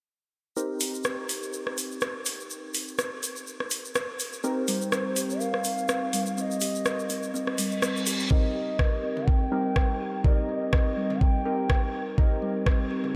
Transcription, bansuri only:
4.44 C5
5.41 F5
6.37 D#5 F5
7.34 D#5
8.31 D#5
9.28 G5
10.24 D#5
11.21 G5
12.18 D#5

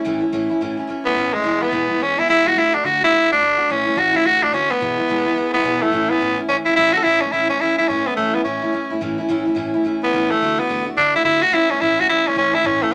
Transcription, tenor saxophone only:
1.05 B3
1.34 G#3
1.62 B3
2.02 C#4
2.19 E4
2.29 E4
2.47 F#4
2.58 E4
2.74 D4
2.85 F#4
3.04 E4
3.32 D4
3.71 C#4
3.99 F#4
4.16 E4
4.26 F#4
4.43 D4
4.53 C#4
4.70 B3
5.53 B3
5.82 A3
6.10 B3
6.49 C#4
6.65 E4
6.76 E4
6.93 F#4
6.97 F#4 A4
7.03 E4
7.21 C#4
7.32 E4
7.49 C#4
7.61 E4
7.78 E4
7.88 C#4
8.06 B3
8.16 A3
8.35 B3
8.44 C#4
10.03 B3
10.31 A3
10.59 B3
10.97 D4
11.16 E4
11.25 E4
11.42 F#4
11.54 E4
11.70 C#4
11.81 E4
12.00 F#4
12.09 E4
12.27 C#4
12.38 C#4
12.54 E4
12.66 C#4
12.83 A3

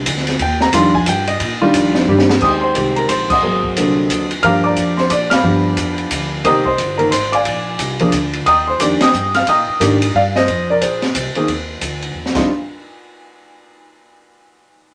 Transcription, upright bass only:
0.06 D2
0.40 D#2
0.73 F2
1.06 G2
1.40 A#2
1.74 F2
2.07 G2
2.41 D#2
2.75 C2
3.09 A#1
3.42 G#1
3.76 C2
4.10 D#2
4.43 G2
4.76 F2
5.10 A#2
5.43 G2
5.77 F2
6.10 D2
6.44 C2
6.78 G1
7.11 G#1
7.45 A#1
7.79 C2
8.12 D2
8.46 D#2
8.80 F2
9.01 muted upright bass stroke
9.13 G2
9.47 A#2
9.68 muted upright bass stroke
9.80 G#2
10.14 G2
10.48 F2
10.81 A#1
11.15 C2
11.34 muted upright bass stroke
11.47 D#2
11.81 D2
12.14 E2
12.35 D#2

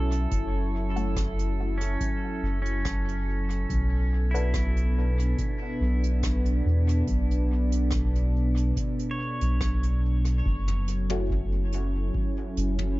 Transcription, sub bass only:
Already playing: B1
0.31 F#1
2.43 F#1
3.70 B1
5.81 B1
6.65 E2
7.07 B1
9.41 B1
10.46 F#1
12.57 F#1

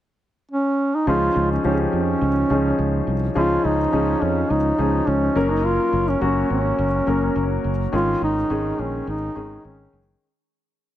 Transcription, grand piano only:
1.07 F3 C#4 D#4 G#4
1.65 F3 C#4 D#4 G4
1.72 G#4
2.50 F3 C#4 D#4 G#4
3.35 F3 C#4 D#4 G#4
3.92 F3 C#4 D#4 G#4
4.78 F3 C#4 D#4 G#4
5.36 F#3 A#3 C#4 A#4
6.21 F#3 A#3 C#4 F#4
7.07 F#3 A#3 C#4 A#4
7.92 D#3 G#3 C#4 G#4
8.50 D#3 G#3 C#4 G#4
9.35 D#3 G#3 C#4 G#4

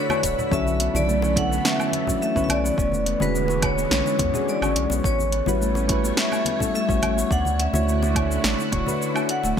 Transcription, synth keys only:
0.09 A3 D4 E4 F#4 C#5
0.51 D3 F#3 C#4 E4 A4
0.93 C#3 D3 F#3 E4 A4
1.35 D3 F#3 C#4 E4
1.39 A4
2.07 F#3 C#4 D4 E4 F#4
2.34 D3 F#3 C#4 E4 B4
3.20 D3 G#3 C#4 F#4 B4
3.61 D3 G#3 C#4 F#4 B4
4.33 G#3 C#4 D4 F#4 G#4
4.61 D3 G#3 C#4 F#4 C#5
5.47 G3 C#4 E4 F#4 B4
5.88 G3 C#4 E4 F#4 B4
6.59 G3 C#4 E4 F#4 A4
6.87 G3 C#4 E4 F#4 C#5
7.73 D3 A3 E4 F#4 C#5
8.14 D3 A3 E4 F#4
8.18 C#5
8.86 A3 D4 E4 F#4 B4
9.14 A3 D4 E4 F#4

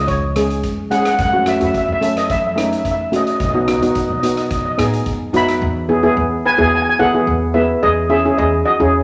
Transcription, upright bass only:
Already playing: C#2
1.19 F#2
1.61 F#2
1.88 F#2
3.40 B1
3.82 B1
4.10 B1
4.78 A2
5.06 G#2
5.34 F#2
5.62 E2
6.17 E2
6.59 E2
7.00 E3
7.27 E2
7.83 E2
8.38 E2
8.80 E2

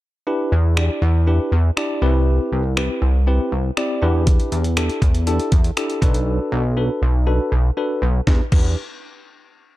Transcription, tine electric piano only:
0.27 D4 E4 G4 B4
0.77 D4 E4 G4 D5
1.27 D4 E4 G4 B4
1.77 D4 E4 G4 D5
2.02 C4 E4 G4 B4
2.77 C4 E4 G4 B4
3.27 C4 E4 G4 B4
3.77 C4 E4 G4 D5
4.02 D4 E4 G4 B4
4.77 D4 E4 G4 A4
5.27 D4 E4 G4 A4
5.77 D4 E4 G4 A4
6.02 D4 F#4 A4 B4
6.77 D4 F#4 A4 B4
7.27 D4 F#4 A4 B4
7.77 D4 F#4 A4 B4
8.27 D4 E4 G4 B4
8.52 D4 E4 G4 B4

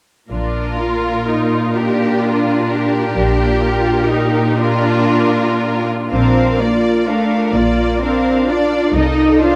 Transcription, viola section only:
0.31 D4
0.79 F4
1.27 D#4
1.75 D4
3.14 D4
3.61 F4
4.08 D#4
4.57 D4
6.11 D4
6.61 F4
7.08 D4
7.56 F4
8.03 D4
8.49 F4
8.96 D#4
9.43 F4

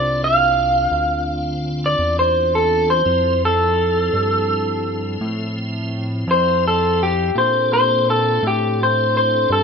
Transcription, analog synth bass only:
Already playing: C2
0.91 D2
1.99 E2
3.06 F2
4.13 G2
5.21 A2
6.27 F2
7.35 A#2
8.43 A2
9.50 G2

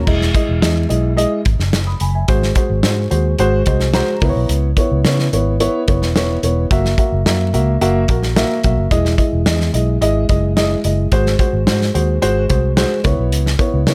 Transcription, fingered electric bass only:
0.07 E1
0.49 E1
0.63 E2
0.90 B1
1.46 G#1
1.59 F#1
2.01 F#1
2.29 G#1
2.70 G#1
2.83 G#2
3.11 D#2
3.39 G#1
3.67 C2
4.22 C#2
4.36 B1
4.49 C#2
4.92 C#2
5.05 C#3
5.33 G#1
5.88 F#1
6.02 E1
6.43 E1
6.71 F#1
7.12 F#1
7.26 F#2
7.54 C#2
7.82 F#1
8.09 A#1
8.64 B1
8.77 F#1
8.91 E1
9.33 E1
9.46 E2
9.74 B1
10.01 G#1
10.30 F#1
10.85 F#1
11.12 G#1
11.53 G#1
11.67 G#2
11.95 D#2
12.23 G#1
12.50 C2
13.05 C#2
13.19 B1
13.32 C#2
13.74 C#2
13.87 C#3

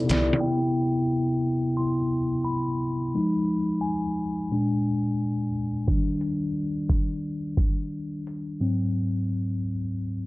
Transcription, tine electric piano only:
Already playing: C3 B3 D#4 E4 A4 D5
0.05 C3 B3
0.10 E4 D5
0.41 C3 B3 E4 G5
1.77 C3 B3 E4 C6
2.44 B5
3.15 F3 G#3 D#4
3.81 G#5
4.51 A#2 G#3 D4
5.87 D#3 G3 D4
8.60 G#2 F#3 C4

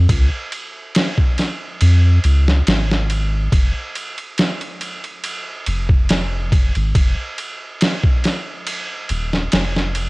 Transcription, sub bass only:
0.10 C#2
1.82 F2
2.24 C#2
2.67 G#1
3.53 F1
5.67 F1
6.76 G#1
6.96 F1
9.10 D#1
9.53 F1

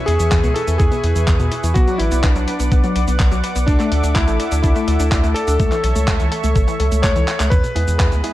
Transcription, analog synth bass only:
0.08 E2
0.20 E2
0.32 E2
0.44 C#2
0.68 E2
0.80 E2
1.04 E2
1.16 E2
1.28 E2
1.40 E2
1.64 E2
1.76 B1
1.99 A1
2.12 B1
2.24 B1
2.36 B1
2.60 B1
2.72 B1
2.96 B1
3.08 B1
3.20 B1
3.32 B1
3.56 B1
3.68 D2
3.92 D2
4.04 D2
4.16 D2
4.28 A1
4.52 D2
4.64 D2
4.88 D2
5.00 D2
5.12 D2
5.24 D2
5.48 D2
5.60 C#2
5.84 B1
5.96 C#2
6.08 C#2
6.20 C#2
6.44 C#2
6.56 G#1
6.80 C#2
6.92 C#2
7.04 C#2
7.16 C#2
7.40 C#2
7.52 E2
7.76 E2
7.88 E2
8.00 E2
8.12 D2

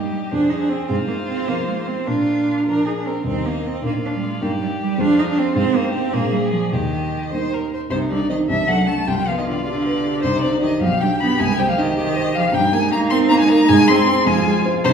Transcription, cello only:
Already playing: G3
0.12 G3
0.31 D4
0.49 D#4
0.60 D4
0.69 C4
0.88 C4
1.08 A#3
1.27 C4
1.48 A#3
1.67 G#3
1.78 A#3
1.87 C4
2.07 D4
2.68 D4
2.87 D#4
2.97 D4
3.06 C4
3.26 C4
3.45 A#3
3.66 C4
3.86 A#3
4.06 D4
4.16 G3
4.24 G#3
4.43 A#3
4.62 G3
4.82 G3
5.00 D4
5.19 D#4
5.30 D4
5.38 C4
5.58 C4
5.75 A#3
5.93 C4
6.13 A#3
6.32 G3
6.51 F3
6.71 D#3
7.91 C3
8.10 D3
8.30 D#3
8.49 E3
8.67 F#3
8.88 A3
9.07 G3
9.27 F3
9.37 D#3
9.47 D3
9.66 D3
10.24 C3
10.44 D3
10.63 D#3
10.82 F3
11.01 G3
11.21 B3
11.40 G#3
11.59 G3
11.70 F3
11.78 D#3
11.97 D#3
12.36 F3
12.54 G3
12.73 G#3
12.93 A#3
13.11 C4
13.31 A#3
13.41 G#3
13.51 A#3
13.69 G#3
13.89 C4
14.26 G#3
14.85 C3

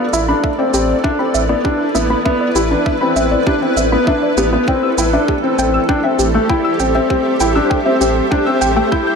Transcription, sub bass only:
0.13 A1
0.74 A1
1.34 A1
1.95 A1
2.55 A1
3.16 A1
3.76 A1
4.37 A1
4.98 A1
5.58 A1
6.19 A1
6.80 A1
7.40 A1
8.01 A1
8.62 A1

